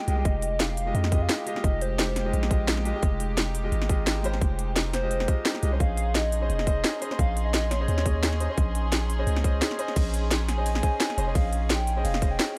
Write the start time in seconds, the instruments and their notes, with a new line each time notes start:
Already playing: string section G#3 D#4 G4, soft synth lead G5
0.07 808-style bass C2, grand piano G#3 F4 G4 D#5, closed hi-hat
0.16 grand piano G#3 F4 G4 D#5
0.25 808-style bass F1, soft synth lead D#5, kick, closed hi-hat
0.42 closed hi-hat
0.60 soft synth lead F5, snare, closed hi-hat
0.77 closed hi-hat
0.86 grand piano G#3 F4 G4 D#5
0.95 808-style bass F2, soft synth lead D#5, closed hi-hat
1.04 snare
1.11 grand piano G#3 F4 G4 D#5, kick, closed hi-hat
1.22 soft synth lead F5
1.29 snare, closed hi-hat
1.46 grand piano G#3 F4 G4 D#5, soft synth lead F5, closed hi-hat
1.55 grand piano G#3 F4 G4 D#5, snare
1.64 808-style bass F1, soft synth lead D#5, kick, closed hi-hat
1.81 soft synth lead C5, closed hi-hat
1.99 snare, closed hi-hat
2.16 snare, closed hi-hat
2.25 grand piano G#3 F4 G4 D#5
2.33 808-style bass A#1, closed hi-hat
2.43 snare
2.50 grand piano G#3 F4 G4 D#5, kick, closed hi-hat
2.68 snare, closed hi-hat
2.77 snare
2.84 grand piano G#3 F4 G4 D#5, closed hi-hat
2.93 grand piano G#3 F4 G4 D#5
3.03 808-style bass F1, kick, closed hi-hat
3.20 closed hi-hat
3.38 snare, closed hi-hat
3.55 closed hi-hat
3.63 grand piano G#3 F4 G4 D#5
3.72 808-style bass G#1, closed hi-hat
3.82 snare
3.89 grand piano G#3 F4 G4 D#5, kick, closed hi-hat
4.07 snare, closed hi-hat
4.23 grand piano G#3 F4 G4 C5, closed hi-hat
4.34 snare
4.41 808-style bass F1, kick, closed hi-hat
4.59 closed hi-hat
4.76 snare, closed hi-hat
4.93 soft synth lead C5, snare, closed hi-hat
5.02 grand piano G#3 F4 G4 D#5
5.11 closed hi-hat
5.20 snare
5.27 grand piano G#3 F4 G4 D#5, kick, closed hi-hat
5.45 snare, closed hi-hat
5.55 snare
5.62 808-style bass C2, grand piano G#3 F4 G4 D#5, closed hi-hat
5.71 grand piano C#4 G#4 C5 D#5
5.80 808-style bass A#1, string section C#4 G#4 C6, soft synth lead F5, kick, closed hi-hat
5.97 closed hi-hat
6.15 soft synth lead D#5, snare, closed hi-hat
6.32 closed hi-hat
6.41 grand piano C#4 G#4 C5 D#5
6.49 808-style bass F1, soft synth lead D#5, closed hi-hat
6.59 snare
6.67 grand piano C#4 G#4 C5 D#5, kick, closed hi-hat
6.84 snare, closed hi-hat
7.01 grand piano C#4 G#4 C5 D#5, closed hi-hat
7.10 grand piano C#4 G#4 C5 D#5, snare
7.18 808-style bass A#1, soft synth lead F5, kick, closed hi-hat
7.37 closed hi-hat
7.45 soft synth lead D#5
7.54 snare, closed hi-hat
7.71 soft synth lead C#5, snare, closed hi-hat
7.80 grand piano C#4 G#4 C5 D#5
7.88 808-style bass D#2, closed hi-hat
7.98 snare
8.05 grand piano C#4 G#4 C#5 D#5, kick, closed hi-hat
8.23 snare, closed hi-hat
8.33 snare
8.40 grand piano C#4 G#4 C5 D#5, closed hi-hat
8.48 grand piano C#4 G#4 C5 D#5
8.58 808-style bass A#1, kick, closed hi-hat
8.75 closed hi-hat
8.92 snare, closed hi-hat
9.10 closed hi-hat
9.18 grand piano C#4 G#4 C5 D#5
9.27 808-style bass C#2, closed hi-hat
9.36 snare
9.44 grand piano C#4 G#4 C5 D#5, kick, closed hi-hat
9.62 snare, closed hi-hat
9.71 snare
9.77 grand piano C#4 G#4 C5 D#5, closed hi-hat
9.88 snare
9.96 808-style bass A#1, kick, closed hi-hat, crash, ride
10.14 closed hi-hat
10.31 snare, closed hi-hat, ride
10.48 soft synth lead G#5, snare, closed hi-hat
10.57 grand piano C#4 G#4 C5 D#5
10.66 closed hi-hat, ride
10.75 snare
10.82 grand piano C#4 G#4 C5 D#5, kick, closed hi-hat
11.00 snare, closed hi-hat, ride
11.10 snare
11.17 808-style bass F1, grand piano C#4 G#4 C5 D#5, closed hi-hat
11.26 grand piano C#4 G#4 C5 D#5
11.35 808-style bass A#1, soft synth lead F5, kick, closed hi-hat, ride
11.53 closed hi-hat
11.70 soft synth lead G5, snare, closed hi-hat, ride
11.87 closed hi-hat
11.96 grand piano C#4 G#4 C5 D#5
12.05 808-style bass F1, soft synth lead F5, closed hi-hat, ride
12.14 snare
12.21 grand piano C#4 G#4 C5 D#5, kick, closed hi-hat
12.31 soft synth lead G5
12.39 snare, closed hi-hat, ride